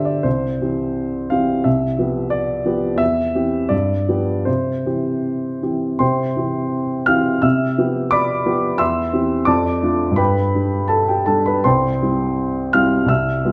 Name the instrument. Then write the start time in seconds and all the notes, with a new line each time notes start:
upright piano
Already playing: D3 D4 G4 C5 D5 E5
0.05 D5
0.23 C2 C5
0.61 E3 C4 G4
1.30 E3 C4 G4 F5
1.64 C2 E5
1.98 F3 B3 G4
2.30 D5
2.66 F3 B3 G4
2.96 E2 E5
3.35 E3 C4 G4
3.69 G2 D5
4.09 F3 B3 G4
4.45 C3 C5
4.86 E3 C4 G4
5.63 E3 C4 G4
5.99 C3 C5 G5 C6
6.37 E3 C4 G4
7.06 E3 C4 G4 F5 F6
7.42 C3 E5 E6
7.78 F3 B3 G4
8.11 D5 B5 D6
8.46 F3 B3 G4
8.78 E2 E5 C6 E6
9.13 E3 C4 G4
9.45 F2 D5 A5 D6
9.83 A3 D4 F4
10.11 G2
10.16 B4 G5 B5
10.54 G3 D4
10.88 A4 A5
11.08 G4 G5
11.26 G3 D4 A4 A5
11.46 B4 B5
11.64 C2 C5 G5 C6
12.02 G3 C4 E4
12.73 G3 C4 E4 F5 F6
13.06 C2 E5 E6
13.44 G3 B3 F4